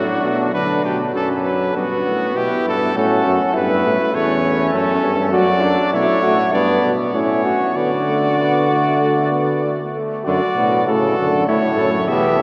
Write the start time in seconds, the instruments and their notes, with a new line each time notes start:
Already playing: euphonium A2, trombone F#3, flugelhorn D4, trumpet F#4
0.23 euphonium B2
0.54 euphonium D3, trombone F#3, flugelhorn D4, trumpet B4
0.84 euphonium B2, trumpet G4
1.15 euphonium F#2, flugelhorn C#4, trumpet A4
1.45 trumpet B4
1.75 euphonium G2, trombone B3, flugelhorn B3, trumpet F#4
2.06 euphonium A2
2.35 euphonium B2, flugelhorn E4, trumpet G4
2.65 euphonium G2, trumpet A4
2.95 euphonium A2, trombone C#4, flugelhorn F#4, trumpet A4
3.25 euphonium F#2
3.54 euphonium G2, trombone B3, flugelhorn E4, trumpet B4
3.84 euphonium A2
4.13 euphonium E2, trombone A3, flugelhorn C#4, trumpet C#5
4.45 trombone A3
4.72 euphonium F#2, trumpet A4
5.02 euphonium G2
5.32 euphonium F#2, trombone F#3, flugelhorn F#4, trumpet D5
5.62 euphonium F#2, flugelhorn D4
5.92 euphonium B2, trombone A3, flugelhorn E4, trumpet C#5
6.22 euphonium A2, flugelhorn F#4
6.52 euphonium G2, trombone B3, flugelhorn D4, trumpet D5
6.83 euphonium B2
7.13 euphonium A2, trombone C#4, flugelhorn E4, trumpet C#5
7.45 flugelhorn F#4
7.75 euphonium D3, trombone B3, flugelhorn F#4, trumpet D5
8.08 trombone A3
8.40 trombone B3
8.72 trombone A3
9.02 trombone A3
9.33 trombone B3
9.64 trombone A3
9.96 trombone A3
10.25 euphonium F#2, trombone D3, flugelhorn F#4, trumpet D5
10.56 euphonium A2, trombone B2
10.87 euphonium A2, trombone C#3, flugelhorn F#4, trumpet A4
11.18 euphonium F#2, trombone D3
11.47 euphonium A2, trombone A2, flugelhorn E4, trumpet C#5
11.77 euphonium F#2, flugelhorn A4
12.08 euphonium E2, trombone B2, flugelhorn G4, trumpet E5
12.38 euphonium E2, trombone C#3